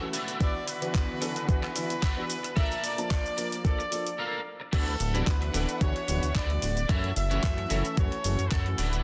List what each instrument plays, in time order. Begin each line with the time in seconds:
Already playing: string section F#3 E4 A4
0.01 grand piano E3 A3 C#4 F#4
0.13 string section D3 B3 F#4, clean electric guitar F#4 B4 D5 E5, open hi-hat, shaker
0.28 closed hi-hat, shaker
0.40 grand piano E3 B3 D4 F#4, trumpet section D5, kick, closed hi-hat, shaker
0.67 trumpet section B4, open hi-hat, shaker
0.82 grand piano E3 B3 D4 F#4, closed hi-hat, shaker
0.95 kick, clap, closed hi-hat, shaker
1.21 grand piano E3 B3 D4 A4, muted clean electric guitar stroke, open hi-hat, shaker
1.35 muted clean electric guitar stroke, closed hi-hat, shaker
1.48 grand piano E3 B3 D4 F#4, trumpet section B4, kick, closed hi-hat, shaker
1.62 muted clean electric guitar stroke, clap
1.75 grand piano E3 B3 D4 E4, muted clean electric guitar stroke, open hi-hat, shaker
1.90 closed hi-hat, shaker
2.02 clean electric guitar F#4 B4 D5 E5, kick, clap, closed hi-hat, shaker
2.17 grand piano E3 B3 D4 F#4
2.30 open hi-hat, shaker
2.43 muted clean electric guitar stroke, closed hi-hat, shaker
2.56 grand piano F3 A#3 D4 A4, string section A#3 D5 A5, clean electric guitar A4 A#4 D5, trumpet section E5, kick, closed hi-hat, shaker
2.72 shaker
2.84 trumpet section D5, open hi-hat, shaker
2.98 grand piano F3 A#3 D4 A5, closed hi-hat, shaker
3.11 kick, clap, closed hi-hat, shaker
3.26 shaker
3.37 grand piano F3 A#3 D4 A#4, muted clean electric guitar stroke, open hi-hat, shaker
3.52 muted clean electric guitar stroke, closed hi-hat, shaker
3.64 grand piano F3 A#3 D4 A4, trumpet section D5, kick, closed hi-hat, shaker
3.78 muted clean electric guitar stroke, shaker
3.91 grand piano F3 A#3 D4 A4, muted clean electric guitar stroke, open hi-hat, shaker
4.07 closed hi-hat, shaker
4.18 clean electric guitar A4 A#4 F5
4.60 muted clean electric guitar stroke
4.72 analog synth bass D2, grand piano E3 B3 D4 F#4, string section D4 B4 E5 F#5, clean electric guitar E4 F#4 B4 D5, trumpet section A4, kick, closed hi-hat, crash, shaker
4.88 closed hi-hat
5.00 analog synth bass D1, open hi-hat, shaker
5.14 grand piano E3 B3 D4 F#4, clean electric guitar E4 F#4 B4 D5, closed hi-hat, shaker
5.27 analog synth bass D2, trumpet section B4, kick, clap, closed hi-hat, shaker
5.41 muted clean electric guitar stroke, closed hi-hat
5.53 analog synth bass D1, grand piano E3 B3 D4 A4, clean electric guitar E4 F#4 B4 D5, open hi-hat, shaker
5.69 closed hi-hat, shaker
5.80 analog synth bass D2, grand piano E3 B3 D4 F#4, trumpet section C#5, muted clean electric guitar stroke, kick, closed hi-hat, shaker
5.95 muted clean electric guitar stroke, closed hi-hat
6.07 analog synth bass D1, grand piano E3 B3 D4 F#4, muted clean electric guitar stroke, open hi-hat, shaker
6.22 analog synth bass D2, muted clean electric guitar stroke, closed hi-hat, shaker
6.34 analog synth bass D2, clean electric guitar E4 F#4 B4 D5, trumpet section D5, kick, clap, closed hi-hat, shaker
6.49 grand piano E3 B3 D4 F#4, closed hi-hat
6.62 analog synth bass D1, muted clean electric guitar stroke, open hi-hat, shaker
6.77 closed hi-hat, shaker
6.89 analog synth bass F#2, grand piano E3 A3 C#4 F#4, clean electric guitar E4 F#4 A4 C#5, string section E4 F#4 A4, trumpet section E5, kick, closed hi-hat, shaker
7.04 closed hi-hat
7.16 analog synth bass F#1, trumpet section E5, open hi-hat, shaker
7.30 grand piano E3 A3 C#4 F#4, clean electric guitar E4 F#4 A4 C#5, closed hi-hat, shaker
7.43 analog synth bass F#2, kick, clap, closed hi-hat, shaker
7.57 muted clean electric guitar stroke, closed hi-hat
7.70 analog synth bass F#1, grand piano E3 A3 C#4 A4, clean electric guitar E4 F#4 A4 C#5, open hi-hat, shaker
7.85 closed hi-hat, shaker
7.97 analog synth bass F#2, grand piano E3 A3 C#4 F#4, trumpet section C#5, muted clean electric guitar stroke, kick, closed hi-hat, shaker
8.11 muted clean electric guitar stroke, closed hi-hat
8.24 analog synth bass F#1, grand piano E3 A3 C#4 F#4, muted clean electric guitar stroke, open hi-hat, shaker
8.38 analog synth bass F#2, muted clean electric guitar stroke, closed hi-hat, shaker
8.51 analog synth bass F#2, clean electric guitar E4 F#4 A4 C#5, trumpet section A4, kick, clap, open hi-hat, shaker
8.65 grand piano E3 A3 C#4 F#4, closed hi-hat
8.78 analog synth bass D1, string section D4 B4 E5 F#5, clean electric guitar E4 F#4 B4 D5, open hi-hat, shaker
8.93 closed hi-hat, shaker